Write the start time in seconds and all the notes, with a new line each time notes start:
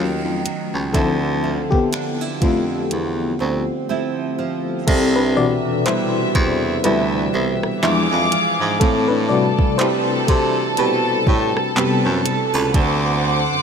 Already playing: D#2 D#3 F#3 A3 C#4 F4 F#4
0.24 F2
0.45 F#3, closed hi-hat
0.74 C#2
0.93 D2 D3 F3 C4 E4 A4, kick, closed hi-hat
1.44 F3
1.71 F2 B3 G4, kick
1.93 D4, finger snap, closed hi-hat
2.21 E4
2.41 F2 A3 C4 F4, kick, closed hi-hat
2.91 E2, closed hi-hat
3.40 D2 C4
3.89 F3 C4 E4
4.38 F3
4.87 C2 C3 C4 A4 E5, kick, closed hi-hat, crash
5.16 D4 B4
5.37 B2 E3 D4 F#4 D5
5.65 E2
5.86 G3 B3 E4 C5, clap, closed hi-hat
6.35 E2, kick, closed hi-hat
6.84 D2 G3 B3 E4 B4, closed hi-hat
7.33 C2 B3
7.63 cross-stick
7.83 E2 E3 F3 G#3 D4 G#4 F5 D6, clap
8.11 F2
8.32 F4, closed hi-hat
8.60 G#2
8.80 A2 A3 C4 A4 A5, kick, closed hi-hat
9.08 D4 B4
9.29 C3 G3 F#4 B4 D5
9.59 C3, kick
9.78 C4 E4 G4 B4 C5, clap, closed hi-hat
10.27 C3 A4 C5, kick, closed hi-hat
10.77 B2 G4 B4, closed hi-hat
11.27 A2 G4, kick
11.57 cross-stick
11.76 F#2 C3 G3 B3 C4 G4 B4, clap
12.05 F#2
12.25 A4, closed hi-hat
12.54 C#2 B4
12.74 D2 D3 C5 F#5 D6, kick, closed hi-hat
13.52 F#2